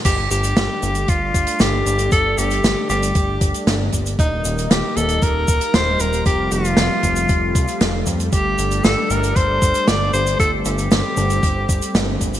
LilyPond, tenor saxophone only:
\new Staff \with { instrumentName = "Tenor saxophone" } { \time 4/4 \key g \minor \tempo 4 = 116 g'8 g'4. f'4 g'4 | a'8 g'4 g'4. r4 | ees'4 g'8 a'8 bes'4 c''8 bes'8 | g'8 f'2. r8 |
g'4 a'8 bes'8 c''4 d''8 c''8 | a'8 g'2. r8 | }